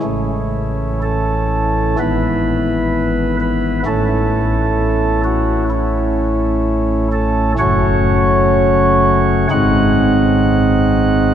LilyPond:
<<
  \new Staff \with { instrumentName = "Pipe organ" } { \time 4/4 \key a \lydian \tempo 4 = 64 e'4 a'4 b'4. b'8 | a'4. fis'8 e'4. a'8 | cis''2 fis''2 | }
  \new Staff \with { instrumentName = "Pipe organ" } { \clef bass \time 4/4 \key a \lydian <a,, a, e a cis'>2 <gis,, gis, e b e'>2 | <a,, a, a cis' e'>1 | <fis,, fis, a cis' fis'>2 <gis,, gis, gis bis dis'>2 | }
>>